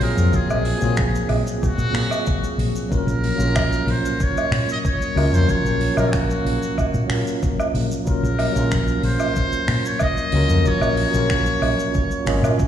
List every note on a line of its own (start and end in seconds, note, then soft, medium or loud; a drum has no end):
0.00 0.13 A#1 loud
0.00 0.32 F#3 medium
0.00 0.33 A#3 medium
0.00 0.34 C4 medium
0.00 0.02 F4 medium
0.00 0.18 F4 medium
0.00 0.18 G#4 loud
0.00 2.93 A#4 loud
0.00 0.37 A#4 medium
0.00 open hi-hat loud
0.17 0.29 F2 medium
0.17 cabasa medium
0.32 0.77 F#3 medium
0.32 0.78 A#3 medium
0.32 0.78 C4 medium
0.32 0.79 F4 medium
0.32 1.31 G#4 medium
0.32 0.79 G#4 medium
0.32 kick loud
0.32 cabasa medium
0.49 0.73 A#1 loud
0.49 cabasa medium
0.49 low woodblock medium
0.65 open hi-hat loud
0.78 1.23 A#1 loud
0.78 1.89 F#3 medium
0.78 1.90 A#3 medium
0.78 1.90 C4 medium
0.78 cabasa medium
0.84 1.92 F4 medium
0.84 1.93 G#4 medium
0.97 finger snap medium
0.97 kick loud
0.97 cabasa medium
1.15 cabasa medium
1.29 1.42 A#1 medium
1.29 open hi-hat loud
1.29 low woodblock medium
1.47 cabasa medium
1.63 2.55 F#4 loud
1.63 kick loud
1.63 cabasa medium
1.78 1.90 A#2 medium
1.78 cabasa medium
1.91 2.06 A#2 medium
1.91 2.86 F#3 medium
1.91 2.87 A#3 medium
1.91 2.88 C4 medium
1.91 finger snap medium
1.91 open hi-hat medium
1.97 2.90 G#4 medium
1.97 2.89 F5 medium
2.11 cabasa medium
2.11 low woodblock medium
2.27 kick loud
2.27 cabasa medium
2.44 cabasa medium
2.58 2.71 A#1 medium
2.58 open hi-hat loud
2.76 cabasa medium
2.89 3.34 F#3 medium
2.89 3.36 A#3 medium
2.89 3.36 C#4 medium
2.89 3.36 F4 medium
2.89 3.37 A#4 medium
2.89 kick medium
2.89 cabasa medium
2.95 3.92 A#4 loud
3.07 3.31 A#1 loud
3.07 cabasa soft
3.23 open hi-hat medium
3.36 3.81 A#1 loud
3.36 5.11 F#3 medium
3.36 5.12 A#3 medium
3.36 5.13 C#4 medium
3.40 5.14 F4 medium
3.40 5.15 A#4 medium
3.40 cabasa medium
3.56 finger snap medium
3.56 kick loud
3.56 cabasa medium
3.56 low woodblock medium
3.73 cabasa medium
3.87 4.00 A#1 medium
3.87 4.24 C5 medium
3.87 open hi-hat medium
4.06 cabasa medium
4.20 4.70 C#5 loud
4.20 kick loud
4.20 cabasa medium
4.37 cabasa soft
4.37 low woodblock medium
4.51 4.64 A#2 medium
4.51 finger snap medium
4.51 open hi-hat medium
4.69 4.78 D#5 loud
4.69 cabasa medium
4.85 5.36 C#5 loud
4.85 kick loud
4.85 cabasa medium
5.02 cabasa soft
5.15 5.29 C#2 loud
5.15 5.32 F#3 loud
5.15 5.32 A#3 medium
5.15 5.33 C#4 medium
5.15 5.33 F4 medium
5.15 5.34 A#4 loud
5.15 open hi-hat medium
5.15 low woodblock medium
5.33 5.44 F2 medium
5.33 5.51 C5 loud
5.33 cabasa medium
5.47 5.93 F#3 medium
5.47 5.94 A#3 medium
5.47 5.94 C#4 medium
5.47 5.94 F4 medium
5.47 5.95 A#4 medium
5.47 5.99 C#5 loud
5.47 kick loud
5.47 cabasa medium
5.64 5.88 A#1 medium
5.64 cabasa soft
5.81 open hi-hat loud
5.94 6.39 A#1 loud
5.94 7.05 F#3 medium
5.94 7.06 A#3 medium
5.94 7.07 C#4 medium
5.94 6.14 A#4 medium
5.94 cabasa medium
5.94 low woodblock medium
6.00 7.09 A#4 medium
6.00 7.08 F5 medium
6.13 7.10 F#4 medium
6.13 finger snap medium
6.13 kick loud
6.13 cabasa medium
6.30 cabasa medium
6.45 6.58 A#1 medium
6.45 open hi-hat loud
6.63 cabasa medium
6.78 kick medium
6.78 cabasa medium
6.78 low woodblock medium
6.94 7.06 A#2 loud
6.94 cabasa soft
7.07 7.22 A#2 medium
7.07 8.02 F#3 medium
7.07 8.03 A#3 medium
7.07 8.04 C#4 medium
7.07 finger snap medium
7.07 open hi-hat medium
7.13 8.05 F4 medium
7.13 8.05 A#4 medium
7.27 cabasa medium
7.43 kick loud
7.43 cabasa medium
7.60 cabasa soft
7.60 low woodblock medium
7.74 7.87 A#1 loud
7.74 open hi-hat medium
7.92 cabasa medium
8.05 8.51 F#3 medium
8.05 8.52 A#3 medium
8.05 8.52 C#4 medium
8.05 8.53 F4 medium
8.05 9.00 A#4 loud
8.05 8.53 A#4 medium
8.05 kick medium
8.05 cabasa medium
8.23 8.47 A#1 loud
8.23 cabasa soft
8.39 open hi-hat medium
8.39 low woodblock medium
8.53 8.97 A#1 loud
8.53 10.27 F#3 medium
8.53 10.29 A#3 medium
8.53 cabasa medium
8.57 10.30 C#4 medium
8.57 10.31 F4 medium
8.57 10.31 A#4 loud
8.71 finger snap medium
8.71 kick loud
8.71 cabasa medium
8.88 cabasa medium
9.03 9.16 A#1 medium
9.03 9.88 C5 loud
9.03 open hi-hat medium
9.20 cabasa medium
9.20 low woodblock medium
9.36 kick medium
9.36 cabasa medium
9.53 cabasa soft
9.68 9.81 A#2 medium
9.68 finger snap medium
9.68 open hi-hat loud
9.86 10.04 C#5 loud
9.86 cabasa medium
9.99 10.69 D#5 loud
9.99 kick loud
9.99 cabasa medium
9.99 low woodblock medium
10.17 cabasa soft
10.32 10.45 C#2 medium
10.32 10.49 F#3 medium
10.32 10.49 A#3 medium
10.32 10.50 C#4 medium
10.32 10.50 F4 medium
10.32 10.51 A#4 loud
10.32 open hi-hat loud
10.49 10.61 F2 medium
10.49 cabasa medium
10.64 11.09 F#3 medium
10.64 11.10 A#3 medium
10.64 11.11 C#4 medium
10.64 11.11 F4 medium
10.64 11.11 A#4 medium
10.64 12.60 C#5 loud
10.64 kick loud
10.64 cabasa medium
10.81 11.05 A#1 loud
10.81 cabasa soft
10.81 low woodblock medium
10.97 open hi-hat loud
11.11 11.55 A#1 loud
11.11 12.21 F#3 medium
11.11 12.22 A#3 medium
11.11 cabasa medium
11.15 12.23 C#4 medium
11.15 12.24 F4 medium
11.15 12.25 A#4 medium
11.30 finger snap medium
11.30 kick loud
11.30 cabasa medium
11.46 cabasa soft
11.62 11.74 A#1 medium
11.62 open hi-hat medium
11.62 low woodblock medium
11.80 cabasa medium
11.94 kick loud
11.94 cabasa medium
12.11 cabasa soft
12.25 12.39 G#1 medium
12.25 12.39 F#3 medium
12.25 12.39 A#3 medium
12.25 12.40 C#4 loud
12.25 12.40 F4 medium
12.25 12.40 D#5 loud
12.25 finger snap medium
12.25 open hi-hat medium
12.41 12.68 A#2 loud
12.41 12.68 F#3 medium
12.41 12.68 A#3 medium
12.41 12.68 C#4 medium
12.41 cabasa medium
12.41 low woodblock medium
12.46 12.68 F4 medium
12.46 12.68 A#4 medium
12.59 kick loud
12.59 cabasa medium